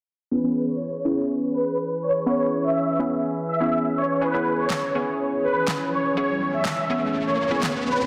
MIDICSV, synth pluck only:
0, 0, Header, 1, 2, 480
1, 0, Start_track
1, 0, Key_signature, 4, "minor"
1, 0, Tempo, 487805
1, 310, Time_signature, 4, 2, 24, 8
1, 7935, End_track
2, 0, Start_track
2, 0, Title_t, "Synth pluck"
2, 0, Program_c, 0, 84
2, 309, Note_on_c, 0, 59, 76
2, 311, Note_on_c, 0, 61, 70
2, 313, Note_on_c, 0, 64, 69
2, 315, Note_on_c, 0, 68, 84
2, 373, Note_off_c, 0, 59, 0
2, 374, Note_off_c, 0, 61, 0
2, 375, Note_off_c, 0, 64, 0
2, 376, Note_off_c, 0, 68, 0
2, 429, Note_on_c, 0, 59, 73
2, 431, Note_on_c, 0, 61, 68
2, 432, Note_on_c, 0, 64, 68
2, 435, Note_on_c, 0, 68, 83
2, 745, Note_off_c, 0, 59, 0
2, 746, Note_off_c, 0, 61, 0
2, 747, Note_off_c, 0, 64, 0
2, 748, Note_off_c, 0, 68, 0
2, 1028, Note_on_c, 0, 59, 71
2, 1031, Note_on_c, 0, 61, 61
2, 1032, Note_on_c, 0, 64, 64
2, 1033, Note_on_c, 0, 68, 80
2, 1534, Note_off_c, 0, 59, 0
2, 1535, Note_off_c, 0, 61, 0
2, 1536, Note_off_c, 0, 64, 0
2, 1537, Note_off_c, 0, 68, 0
2, 2226, Note_on_c, 0, 59, 74
2, 2228, Note_on_c, 0, 61, 68
2, 2228, Note_on_c, 0, 64, 70
2, 2231, Note_on_c, 0, 71, 83
2, 2607, Note_off_c, 0, 59, 0
2, 2608, Note_off_c, 0, 61, 0
2, 2608, Note_off_c, 0, 64, 0
2, 2609, Note_off_c, 0, 71, 0
2, 2946, Note_on_c, 0, 59, 71
2, 2946, Note_on_c, 0, 61, 66
2, 2949, Note_on_c, 0, 64, 62
2, 2950, Note_on_c, 0, 68, 74
2, 3263, Note_off_c, 0, 59, 0
2, 3264, Note_off_c, 0, 61, 0
2, 3265, Note_off_c, 0, 64, 0
2, 3265, Note_off_c, 0, 68, 0
2, 3545, Note_on_c, 0, 59, 72
2, 3546, Note_on_c, 0, 61, 66
2, 3548, Note_on_c, 0, 64, 64
2, 3549, Note_on_c, 0, 68, 81
2, 3863, Note_off_c, 0, 59, 0
2, 3864, Note_off_c, 0, 61, 0
2, 3865, Note_off_c, 0, 64, 0
2, 3865, Note_off_c, 0, 68, 0
2, 4147, Note_on_c, 0, 59, 73
2, 4149, Note_on_c, 0, 61, 67
2, 4151, Note_on_c, 0, 64, 68
2, 4152, Note_on_c, 0, 68, 87
2, 4212, Note_off_c, 0, 59, 0
2, 4213, Note_off_c, 0, 61, 0
2, 4214, Note_off_c, 0, 64, 0
2, 4214, Note_off_c, 0, 68, 0
2, 4268, Note_on_c, 0, 59, 73
2, 4270, Note_on_c, 0, 61, 71
2, 4272, Note_on_c, 0, 64, 69
2, 4274, Note_on_c, 0, 68, 79
2, 4584, Note_off_c, 0, 59, 0
2, 4586, Note_off_c, 0, 61, 0
2, 4586, Note_off_c, 0, 64, 0
2, 4587, Note_off_c, 0, 68, 0
2, 4871, Note_on_c, 0, 59, 70
2, 4872, Note_on_c, 0, 61, 68
2, 4874, Note_on_c, 0, 64, 66
2, 4875, Note_on_c, 0, 68, 79
2, 5375, Note_off_c, 0, 59, 0
2, 5376, Note_off_c, 0, 61, 0
2, 5377, Note_off_c, 0, 64, 0
2, 5377, Note_off_c, 0, 68, 0
2, 6070, Note_on_c, 0, 59, 78
2, 6071, Note_on_c, 0, 61, 71
2, 6072, Note_on_c, 0, 64, 68
2, 6074, Note_on_c, 0, 68, 83
2, 6449, Note_off_c, 0, 59, 0
2, 6449, Note_off_c, 0, 61, 0
2, 6450, Note_off_c, 0, 64, 0
2, 6451, Note_off_c, 0, 68, 0
2, 6788, Note_on_c, 0, 59, 71
2, 6789, Note_on_c, 0, 61, 63
2, 6790, Note_on_c, 0, 64, 67
2, 6792, Note_on_c, 0, 68, 77
2, 7104, Note_off_c, 0, 59, 0
2, 7105, Note_off_c, 0, 61, 0
2, 7106, Note_off_c, 0, 64, 0
2, 7107, Note_off_c, 0, 68, 0
2, 7387, Note_on_c, 0, 59, 73
2, 7389, Note_on_c, 0, 61, 65
2, 7391, Note_on_c, 0, 64, 62
2, 7392, Note_on_c, 0, 68, 75
2, 7704, Note_off_c, 0, 59, 0
2, 7705, Note_off_c, 0, 61, 0
2, 7706, Note_off_c, 0, 64, 0
2, 7707, Note_off_c, 0, 68, 0
2, 7935, End_track
0, 0, End_of_file